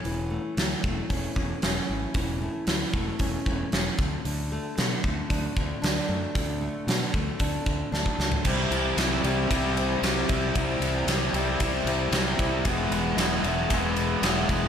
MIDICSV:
0, 0, Header, 1, 5, 480
1, 0, Start_track
1, 0, Tempo, 524934
1, 44, Time_signature, 4, 2, 24, 8
1, 13424, End_track
2, 0, Start_track
2, 0, Title_t, "Distorted electric guitar"
2, 0, Program_c, 0, 30
2, 7725, Note_on_c, 0, 48, 80
2, 7734, Note_on_c, 0, 55, 85
2, 7737, Note_on_c, 0, 60, 81
2, 7744, Note_on_c, 0, 64, 85
2, 8207, Note_off_c, 0, 48, 0
2, 8210, Note_off_c, 0, 55, 0
2, 8211, Note_on_c, 0, 48, 67
2, 8214, Note_on_c, 0, 55, 71
2, 8215, Note_off_c, 0, 60, 0
2, 8219, Note_on_c, 0, 60, 84
2, 8222, Note_off_c, 0, 64, 0
2, 8225, Note_on_c, 0, 64, 82
2, 8440, Note_off_c, 0, 48, 0
2, 8443, Note_on_c, 0, 48, 73
2, 8449, Note_off_c, 0, 60, 0
2, 8450, Note_off_c, 0, 55, 0
2, 8453, Note_on_c, 0, 60, 79
2, 8454, Note_on_c, 0, 55, 76
2, 8456, Note_off_c, 0, 64, 0
2, 8460, Note_on_c, 0, 64, 85
2, 8678, Note_off_c, 0, 48, 0
2, 8683, Note_off_c, 0, 55, 0
2, 8688, Note_off_c, 0, 60, 0
2, 8689, Note_on_c, 0, 48, 86
2, 8694, Note_on_c, 0, 55, 86
2, 8699, Note_on_c, 0, 60, 97
2, 8700, Note_off_c, 0, 64, 0
2, 8704, Note_on_c, 0, 64, 90
2, 9166, Note_off_c, 0, 48, 0
2, 9172, Note_off_c, 0, 55, 0
2, 9176, Note_off_c, 0, 60, 0
2, 9177, Note_on_c, 0, 48, 84
2, 9183, Note_on_c, 0, 55, 84
2, 9187, Note_on_c, 0, 60, 80
2, 9190, Note_off_c, 0, 64, 0
2, 9193, Note_on_c, 0, 64, 83
2, 9400, Note_off_c, 0, 48, 0
2, 9408, Note_off_c, 0, 55, 0
2, 9411, Note_on_c, 0, 48, 73
2, 9415, Note_off_c, 0, 60, 0
2, 9419, Note_on_c, 0, 55, 78
2, 9423, Note_off_c, 0, 64, 0
2, 9426, Note_on_c, 0, 60, 77
2, 9426, Note_on_c, 0, 64, 83
2, 9631, Note_off_c, 0, 48, 0
2, 9642, Note_on_c, 0, 48, 79
2, 9644, Note_off_c, 0, 55, 0
2, 9644, Note_off_c, 0, 60, 0
2, 9655, Note_on_c, 0, 55, 82
2, 9655, Note_on_c, 0, 60, 94
2, 9656, Note_off_c, 0, 64, 0
2, 9660, Note_on_c, 0, 64, 91
2, 10120, Note_off_c, 0, 48, 0
2, 10127, Note_off_c, 0, 55, 0
2, 10129, Note_off_c, 0, 60, 0
2, 10131, Note_on_c, 0, 48, 68
2, 10138, Note_on_c, 0, 55, 83
2, 10140, Note_on_c, 0, 60, 78
2, 10142, Note_off_c, 0, 64, 0
2, 10146, Note_on_c, 0, 64, 81
2, 10359, Note_off_c, 0, 48, 0
2, 10365, Note_off_c, 0, 55, 0
2, 10368, Note_off_c, 0, 60, 0
2, 10370, Note_on_c, 0, 48, 80
2, 10376, Note_on_c, 0, 55, 84
2, 10379, Note_on_c, 0, 60, 92
2, 10380, Note_off_c, 0, 64, 0
2, 10384, Note_on_c, 0, 64, 86
2, 10600, Note_off_c, 0, 48, 0
2, 10607, Note_off_c, 0, 55, 0
2, 10610, Note_off_c, 0, 60, 0
2, 10611, Note_on_c, 0, 48, 75
2, 10618, Note_on_c, 0, 55, 80
2, 10621, Note_on_c, 0, 60, 94
2, 10623, Note_off_c, 0, 64, 0
2, 10626, Note_on_c, 0, 64, 99
2, 11079, Note_off_c, 0, 48, 0
2, 11088, Note_off_c, 0, 55, 0
2, 11088, Note_off_c, 0, 60, 0
2, 11090, Note_on_c, 0, 48, 78
2, 11099, Note_on_c, 0, 55, 88
2, 11099, Note_on_c, 0, 60, 89
2, 11102, Note_off_c, 0, 64, 0
2, 11105, Note_on_c, 0, 64, 93
2, 11312, Note_off_c, 0, 48, 0
2, 11318, Note_off_c, 0, 55, 0
2, 11321, Note_off_c, 0, 60, 0
2, 11323, Note_on_c, 0, 48, 72
2, 11329, Note_on_c, 0, 55, 84
2, 11332, Note_on_c, 0, 60, 78
2, 11335, Note_off_c, 0, 64, 0
2, 11339, Note_on_c, 0, 64, 83
2, 11551, Note_off_c, 0, 48, 0
2, 11555, Note_off_c, 0, 55, 0
2, 11556, Note_off_c, 0, 60, 0
2, 11568, Note_on_c, 0, 52, 82
2, 11577, Note_on_c, 0, 56, 98
2, 11580, Note_on_c, 0, 59, 94
2, 11582, Note_off_c, 0, 64, 0
2, 11585, Note_on_c, 0, 64, 101
2, 12040, Note_off_c, 0, 52, 0
2, 12041, Note_off_c, 0, 56, 0
2, 12043, Note_on_c, 0, 52, 74
2, 12044, Note_off_c, 0, 59, 0
2, 12052, Note_on_c, 0, 56, 92
2, 12055, Note_on_c, 0, 59, 86
2, 12057, Note_off_c, 0, 64, 0
2, 12060, Note_on_c, 0, 64, 92
2, 12285, Note_off_c, 0, 56, 0
2, 12285, Note_off_c, 0, 59, 0
2, 12287, Note_off_c, 0, 52, 0
2, 12291, Note_on_c, 0, 52, 83
2, 12296, Note_on_c, 0, 56, 72
2, 12296, Note_on_c, 0, 59, 77
2, 12302, Note_off_c, 0, 64, 0
2, 12305, Note_on_c, 0, 64, 88
2, 12525, Note_off_c, 0, 56, 0
2, 12530, Note_off_c, 0, 52, 0
2, 12533, Note_off_c, 0, 59, 0
2, 12533, Note_on_c, 0, 52, 82
2, 12536, Note_on_c, 0, 56, 95
2, 12542, Note_off_c, 0, 64, 0
2, 12543, Note_on_c, 0, 59, 105
2, 12546, Note_on_c, 0, 64, 98
2, 13008, Note_off_c, 0, 56, 0
2, 13011, Note_off_c, 0, 52, 0
2, 13013, Note_off_c, 0, 59, 0
2, 13015, Note_on_c, 0, 52, 91
2, 13019, Note_on_c, 0, 56, 83
2, 13022, Note_off_c, 0, 64, 0
2, 13024, Note_on_c, 0, 59, 84
2, 13025, Note_on_c, 0, 64, 89
2, 13235, Note_off_c, 0, 52, 0
2, 13236, Note_off_c, 0, 56, 0
2, 13239, Note_on_c, 0, 52, 79
2, 13242, Note_off_c, 0, 59, 0
2, 13247, Note_on_c, 0, 56, 78
2, 13252, Note_off_c, 0, 64, 0
2, 13253, Note_on_c, 0, 59, 80
2, 13256, Note_on_c, 0, 64, 85
2, 13424, Note_off_c, 0, 52, 0
2, 13424, Note_off_c, 0, 56, 0
2, 13424, Note_off_c, 0, 59, 0
2, 13424, Note_off_c, 0, 64, 0
2, 13424, End_track
3, 0, Start_track
3, 0, Title_t, "Steel-string acoustic guitar"
3, 0, Program_c, 1, 25
3, 0, Note_on_c, 1, 57, 66
3, 0, Note_on_c, 1, 61, 65
3, 40, Note_on_c, 1, 52, 67
3, 274, Note_off_c, 1, 57, 0
3, 277, Note_on_c, 1, 57, 57
3, 513, Note_off_c, 1, 52, 0
3, 524, Note_on_c, 1, 52, 59
3, 763, Note_off_c, 1, 57, 0
3, 766, Note_on_c, 1, 57, 65
3, 999, Note_off_c, 1, 61, 0
3, 1002, Note_on_c, 1, 61, 67
3, 1230, Note_off_c, 1, 52, 0
3, 1241, Note_on_c, 1, 52, 58
3, 1477, Note_off_c, 1, 61, 0
3, 1488, Note_on_c, 1, 61, 67
3, 1723, Note_off_c, 1, 57, 0
3, 1727, Note_on_c, 1, 57, 58
3, 1959, Note_off_c, 1, 52, 0
3, 1970, Note_on_c, 1, 52, 68
3, 2205, Note_off_c, 1, 57, 0
3, 2209, Note_on_c, 1, 57, 58
3, 2441, Note_off_c, 1, 52, 0
3, 2452, Note_on_c, 1, 52, 65
3, 2686, Note_off_c, 1, 57, 0
3, 2687, Note_off_c, 1, 61, 0
3, 2690, Note_on_c, 1, 57, 63
3, 2931, Note_on_c, 1, 61, 66
3, 3155, Note_off_c, 1, 52, 0
3, 3166, Note_on_c, 1, 52, 60
3, 3398, Note_off_c, 1, 61, 0
3, 3409, Note_on_c, 1, 61, 70
3, 3646, Note_off_c, 1, 52, 0
3, 3647, Note_off_c, 1, 61, 0
3, 3653, Note_on_c, 1, 50, 60
3, 3886, Note_off_c, 1, 50, 0
3, 3890, Note_on_c, 1, 50, 67
3, 4127, Note_off_c, 1, 57, 0
3, 4131, Note_on_c, 1, 57, 65
3, 4351, Note_off_c, 1, 50, 0
3, 4362, Note_on_c, 1, 50, 64
3, 4593, Note_off_c, 1, 57, 0
3, 4604, Note_on_c, 1, 57, 68
3, 4845, Note_on_c, 1, 62, 69
3, 5076, Note_off_c, 1, 50, 0
3, 5087, Note_on_c, 1, 50, 64
3, 5310, Note_off_c, 1, 62, 0
3, 5321, Note_on_c, 1, 62, 69
3, 5550, Note_off_c, 1, 57, 0
3, 5561, Note_on_c, 1, 57, 60
3, 5794, Note_off_c, 1, 50, 0
3, 5805, Note_on_c, 1, 50, 66
3, 6035, Note_off_c, 1, 57, 0
3, 6046, Note_on_c, 1, 57, 62
3, 6279, Note_off_c, 1, 50, 0
3, 6290, Note_on_c, 1, 50, 62
3, 6524, Note_off_c, 1, 57, 0
3, 6525, Note_off_c, 1, 62, 0
3, 6535, Note_on_c, 1, 57, 61
3, 6768, Note_on_c, 1, 62, 65
3, 7001, Note_off_c, 1, 50, 0
3, 7012, Note_on_c, 1, 50, 66
3, 7233, Note_off_c, 1, 62, 0
3, 7244, Note_on_c, 1, 62, 65
3, 7475, Note_off_c, 1, 57, 0
3, 7486, Note_on_c, 1, 57, 56
3, 7721, Note_on_c, 1, 48, 62
3, 7727, Note_off_c, 1, 62, 0
3, 7728, Note_off_c, 1, 57, 0
3, 7730, Note_off_c, 1, 50, 0
3, 7961, Note_on_c, 1, 52, 67
3, 8208, Note_off_c, 1, 52, 0
3, 8212, Note_on_c, 1, 52, 60
3, 8450, Note_on_c, 1, 55, 71
3, 8695, Note_on_c, 1, 64, 78
3, 8925, Note_off_c, 1, 48, 0
3, 8928, Note_on_c, 1, 60, 62
3, 9164, Note_off_c, 1, 55, 0
3, 9175, Note_on_c, 1, 55, 71
3, 9401, Note_off_c, 1, 64, 0
3, 9412, Note_on_c, 1, 64, 72
3, 9647, Note_on_c, 1, 48, 65
3, 9889, Note_off_c, 1, 52, 0
3, 9893, Note_on_c, 1, 52, 71
3, 10120, Note_off_c, 1, 52, 0
3, 10129, Note_off_c, 1, 60, 0
3, 10131, Note_on_c, 1, 52, 74
3, 10366, Note_off_c, 1, 55, 0
3, 10377, Note_on_c, 1, 55, 69
3, 10603, Note_off_c, 1, 64, 0
3, 10614, Note_on_c, 1, 64, 75
3, 10848, Note_off_c, 1, 48, 0
3, 10858, Note_on_c, 1, 60, 65
3, 11082, Note_off_c, 1, 55, 0
3, 11093, Note_on_c, 1, 55, 76
3, 11318, Note_off_c, 1, 64, 0
3, 11329, Note_off_c, 1, 52, 0
3, 11329, Note_on_c, 1, 64, 73
3, 11568, Note_off_c, 1, 64, 0
3, 11570, Note_off_c, 1, 55, 0
3, 11573, Note_off_c, 1, 60, 0
3, 13424, End_track
4, 0, Start_track
4, 0, Title_t, "Fingered electric bass"
4, 0, Program_c, 2, 33
4, 45, Note_on_c, 2, 28, 78
4, 337, Note_off_c, 2, 28, 0
4, 522, Note_on_c, 2, 38, 77
4, 669, Note_off_c, 2, 38, 0
4, 764, Note_on_c, 2, 28, 82
4, 910, Note_off_c, 2, 28, 0
4, 1005, Note_on_c, 2, 28, 77
4, 1150, Note_off_c, 2, 28, 0
4, 1245, Note_on_c, 2, 28, 83
4, 1391, Note_off_c, 2, 28, 0
4, 1490, Note_on_c, 2, 28, 76
4, 1634, Note_off_c, 2, 28, 0
4, 1730, Note_on_c, 2, 32, 71
4, 1874, Note_off_c, 2, 32, 0
4, 1962, Note_on_c, 2, 28, 86
4, 2255, Note_off_c, 2, 28, 0
4, 2442, Note_on_c, 2, 38, 77
4, 2589, Note_off_c, 2, 38, 0
4, 2682, Note_on_c, 2, 28, 84
4, 2829, Note_off_c, 2, 28, 0
4, 2923, Note_on_c, 2, 28, 79
4, 3070, Note_off_c, 2, 28, 0
4, 3166, Note_on_c, 2, 28, 83
4, 3312, Note_off_c, 2, 28, 0
4, 3405, Note_on_c, 2, 28, 77
4, 3551, Note_off_c, 2, 28, 0
4, 3646, Note_on_c, 2, 38, 79
4, 3792, Note_off_c, 2, 38, 0
4, 3887, Note_on_c, 2, 38, 82
4, 4179, Note_off_c, 2, 38, 0
4, 4369, Note_on_c, 2, 47, 89
4, 4514, Note_off_c, 2, 47, 0
4, 4612, Note_on_c, 2, 38, 86
4, 4756, Note_off_c, 2, 38, 0
4, 4848, Note_on_c, 2, 38, 85
4, 4994, Note_off_c, 2, 38, 0
4, 5087, Note_on_c, 2, 38, 89
4, 5233, Note_off_c, 2, 38, 0
4, 5328, Note_on_c, 2, 38, 84
4, 5473, Note_off_c, 2, 38, 0
4, 5567, Note_on_c, 2, 42, 84
4, 5713, Note_off_c, 2, 42, 0
4, 5808, Note_on_c, 2, 38, 94
4, 6100, Note_off_c, 2, 38, 0
4, 6280, Note_on_c, 2, 47, 75
4, 6429, Note_off_c, 2, 47, 0
4, 6526, Note_on_c, 2, 38, 84
4, 6672, Note_off_c, 2, 38, 0
4, 6769, Note_on_c, 2, 38, 74
4, 6915, Note_off_c, 2, 38, 0
4, 7004, Note_on_c, 2, 38, 76
4, 7152, Note_off_c, 2, 38, 0
4, 7243, Note_on_c, 2, 38, 80
4, 7391, Note_off_c, 2, 38, 0
4, 7484, Note_on_c, 2, 37, 85
4, 7631, Note_off_c, 2, 37, 0
4, 7728, Note_on_c, 2, 36, 83
4, 7930, Note_off_c, 2, 36, 0
4, 7961, Note_on_c, 2, 36, 75
4, 8166, Note_off_c, 2, 36, 0
4, 8201, Note_on_c, 2, 36, 83
4, 8406, Note_off_c, 2, 36, 0
4, 8446, Note_on_c, 2, 36, 86
4, 8648, Note_off_c, 2, 36, 0
4, 8694, Note_on_c, 2, 36, 84
4, 9095, Note_off_c, 2, 36, 0
4, 9162, Note_on_c, 2, 36, 83
4, 9367, Note_off_c, 2, 36, 0
4, 9413, Note_on_c, 2, 36, 90
4, 9613, Note_off_c, 2, 36, 0
4, 9651, Note_on_c, 2, 36, 87
4, 9852, Note_off_c, 2, 36, 0
4, 9875, Note_on_c, 2, 36, 83
4, 10083, Note_off_c, 2, 36, 0
4, 10119, Note_on_c, 2, 36, 83
4, 10325, Note_off_c, 2, 36, 0
4, 10360, Note_on_c, 2, 36, 87
4, 10565, Note_off_c, 2, 36, 0
4, 10610, Note_on_c, 2, 36, 82
4, 10811, Note_off_c, 2, 36, 0
4, 10832, Note_on_c, 2, 36, 88
4, 11040, Note_off_c, 2, 36, 0
4, 11077, Note_on_c, 2, 36, 94
4, 11283, Note_off_c, 2, 36, 0
4, 11332, Note_on_c, 2, 36, 87
4, 11532, Note_off_c, 2, 36, 0
4, 11568, Note_on_c, 2, 28, 100
4, 11770, Note_off_c, 2, 28, 0
4, 11803, Note_on_c, 2, 28, 81
4, 12007, Note_off_c, 2, 28, 0
4, 12039, Note_on_c, 2, 28, 94
4, 12244, Note_off_c, 2, 28, 0
4, 12284, Note_on_c, 2, 28, 92
4, 12487, Note_off_c, 2, 28, 0
4, 12533, Note_on_c, 2, 28, 84
4, 12933, Note_off_c, 2, 28, 0
4, 12999, Note_on_c, 2, 28, 83
4, 13203, Note_off_c, 2, 28, 0
4, 13249, Note_on_c, 2, 28, 89
4, 13424, Note_off_c, 2, 28, 0
4, 13424, End_track
5, 0, Start_track
5, 0, Title_t, "Drums"
5, 47, Note_on_c, 9, 46, 38
5, 138, Note_off_c, 9, 46, 0
5, 525, Note_on_c, 9, 46, 46
5, 532, Note_on_c, 9, 38, 98
5, 616, Note_off_c, 9, 46, 0
5, 623, Note_off_c, 9, 38, 0
5, 768, Note_on_c, 9, 36, 78
5, 859, Note_off_c, 9, 36, 0
5, 1007, Note_on_c, 9, 36, 70
5, 1007, Note_on_c, 9, 46, 46
5, 1098, Note_off_c, 9, 36, 0
5, 1099, Note_off_c, 9, 46, 0
5, 1246, Note_on_c, 9, 36, 68
5, 1337, Note_off_c, 9, 36, 0
5, 1484, Note_on_c, 9, 46, 44
5, 1491, Note_on_c, 9, 38, 96
5, 1575, Note_off_c, 9, 46, 0
5, 1582, Note_off_c, 9, 38, 0
5, 1960, Note_on_c, 9, 46, 45
5, 1964, Note_on_c, 9, 36, 91
5, 2051, Note_off_c, 9, 46, 0
5, 2055, Note_off_c, 9, 36, 0
5, 2440, Note_on_c, 9, 46, 47
5, 2448, Note_on_c, 9, 38, 100
5, 2532, Note_off_c, 9, 46, 0
5, 2539, Note_off_c, 9, 38, 0
5, 2684, Note_on_c, 9, 36, 76
5, 2776, Note_off_c, 9, 36, 0
5, 2919, Note_on_c, 9, 46, 45
5, 2924, Note_on_c, 9, 36, 74
5, 3011, Note_off_c, 9, 46, 0
5, 3015, Note_off_c, 9, 36, 0
5, 3166, Note_on_c, 9, 36, 71
5, 3257, Note_off_c, 9, 36, 0
5, 3404, Note_on_c, 9, 46, 45
5, 3411, Note_on_c, 9, 38, 89
5, 3496, Note_off_c, 9, 46, 0
5, 3503, Note_off_c, 9, 38, 0
5, 3645, Note_on_c, 9, 36, 94
5, 3736, Note_off_c, 9, 36, 0
5, 3889, Note_on_c, 9, 46, 42
5, 3980, Note_off_c, 9, 46, 0
5, 4368, Note_on_c, 9, 46, 43
5, 4375, Note_on_c, 9, 38, 105
5, 4460, Note_off_c, 9, 46, 0
5, 4467, Note_off_c, 9, 38, 0
5, 4608, Note_on_c, 9, 36, 74
5, 4700, Note_off_c, 9, 36, 0
5, 4848, Note_on_c, 9, 36, 73
5, 4852, Note_on_c, 9, 46, 45
5, 4940, Note_off_c, 9, 36, 0
5, 4943, Note_off_c, 9, 46, 0
5, 5090, Note_on_c, 9, 36, 79
5, 5181, Note_off_c, 9, 36, 0
5, 5336, Note_on_c, 9, 46, 50
5, 5343, Note_on_c, 9, 38, 102
5, 5427, Note_off_c, 9, 46, 0
5, 5435, Note_off_c, 9, 38, 0
5, 5809, Note_on_c, 9, 36, 92
5, 5814, Note_on_c, 9, 46, 44
5, 5901, Note_off_c, 9, 36, 0
5, 5906, Note_off_c, 9, 46, 0
5, 6293, Note_on_c, 9, 46, 49
5, 6300, Note_on_c, 9, 38, 104
5, 6384, Note_off_c, 9, 46, 0
5, 6391, Note_off_c, 9, 38, 0
5, 6528, Note_on_c, 9, 36, 70
5, 6620, Note_off_c, 9, 36, 0
5, 6763, Note_on_c, 9, 46, 45
5, 6766, Note_on_c, 9, 36, 77
5, 6854, Note_off_c, 9, 46, 0
5, 6858, Note_off_c, 9, 36, 0
5, 7008, Note_on_c, 9, 36, 73
5, 7099, Note_off_c, 9, 36, 0
5, 7257, Note_on_c, 9, 38, 50
5, 7349, Note_off_c, 9, 38, 0
5, 7368, Note_on_c, 9, 36, 59
5, 7460, Note_off_c, 9, 36, 0
5, 7495, Note_on_c, 9, 38, 66
5, 7587, Note_off_c, 9, 38, 0
5, 7605, Note_on_c, 9, 43, 72
5, 7696, Note_off_c, 9, 43, 0
5, 7723, Note_on_c, 9, 49, 91
5, 7728, Note_on_c, 9, 36, 86
5, 7815, Note_off_c, 9, 49, 0
5, 7820, Note_off_c, 9, 36, 0
5, 7970, Note_on_c, 9, 51, 64
5, 8062, Note_off_c, 9, 51, 0
5, 8209, Note_on_c, 9, 51, 76
5, 8216, Note_on_c, 9, 38, 100
5, 8300, Note_off_c, 9, 51, 0
5, 8308, Note_off_c, 9, 38, 0
5, 8451, Note_on_c, 9, 51, 61
5, 8543, Note_off_c, 9, 51, 0
5, 8693, Note_on_c, 9, 36, 80
5, 8695, Note_on_c, 9, 51, 95
5, 8784, Note_off_c, 9, 36, 0
5, 8786, Note_off_c, 9, 51, 0
5, 8934, Note_on_c, 9, 51, 58
5, 9026, Note_off_c, 9, 51, 0
5, 9176, Note_on_c, 9, 51, 91
5, 9183, Note_on_c, 9, 38, 93
5, 9267, Note_off_c, 9, 51, 0
5, 9275, Note_off_c, 9, 38, 0
5, 9410, Note_on_c, 9, 51, 64
5, 9413, Note_on_c, 9, 36, 79
5, 9501, Note_off_c, 9, 51, 0
5, 9504, Note_off_c, 9, 36, 0
5, 9651, Note_on_c, 9, 51, 80
5, 9652, Note_on_c, 9, 36, 93
5, 9742, Note_off_c, 9, 51, 0
5, 9743, Note_off_c, 9, 36, 0
5, 9893, Note_on_c, 9, 51, 71
5, 9984, Note_off_c, 9, 51, 0
5, 10131, Note_on_c, 9, 51, 95
5, 10138, Note_on_c, 9, 38, 112
5, 10222, Note_off_c, 9, 51, 0
5, 10230, Note_off_c, 9, 38, 0
5, 10371, Note_on_c, 9, 51, 64
5, 10462, Note_off_c, 9, 51, 0
5, 10608, Note_on_c, 9, 51, 88
5, 10611, Note_on_c, 9, 36, 85
5, 10699, Note_off_c, 9, 51, 0
5, 10703, Note_off_c, 9, 36, 0
5, 10854, Note_on_c, 9, 51, 63
5, 10946, Note_off_c, 9, 51, 0
5, 11087, Note_on_c, 9, 51, 90
5, 11094, Note_on_c, 9, 38, 101
5, 11178, Note_off_c, 9, 51, 0
5, 11185, Note_off_c, 9, 38, 0
5, 11331, Note_on_c, 9, 36, 87
5, 11333, Note_on_c, 9, 51, 58
5, 11422, Note_off_c, 9, 36, 0
5, 11425, Note_off_c, 9, 51, 0
5, 11567, Note_on_c, 9, 51, 80
5, 11570, Note_on_c, 9, 36, 104
5, 11658, Note_off_c, 9, 51, 0
5, 11661, Note_off_c, 9, 36, 0
5, 11812, Note_on_c, 9, 51, 65
5, 11904, Note_off_c, 9, 51, 0
5, 12053, Note_on_c, 9, 51, 89
5, 12060, Note_on_c, 9, 38, 112
5, 12144, Note_off_c, 9, 51, 0
5, 12151, Note_off_c, 9, 38, 0
5, 12292, Note_on_c, 9, 51, 58
5, 12384, Note_off_c, 9, 51, 0
5, 12530, Note_on_c, 9, 51, 90
5, 12532, Note_on_c, 9, 36, 80
5, 12621, Note_off_c, 9, 51, 0
5, 12623, Note_off_c, 9, 36, 0
5, 12770, Note_on_c, 9, 51, 58
5, 12861, Note_off_c, 9, 51, 0
5, 13013, Note_on_c, 9, 51, 87
5, 13020, Note_on_c, 9, 38, 104
5, 13104, Note_off_c, 9, 51, 0
5, 13111, Note_off_c, 9, 38, 0
5, 13251, Note_on_c, 9, 36, 80
5, 13251, Note_on_c, 9, 51, 65
5, 13342, Note_off_c, 9, 36, 0
5, 13343, Note_off_c, 9, 51, 0
5, 13424, End_track
0, 0, End_of_file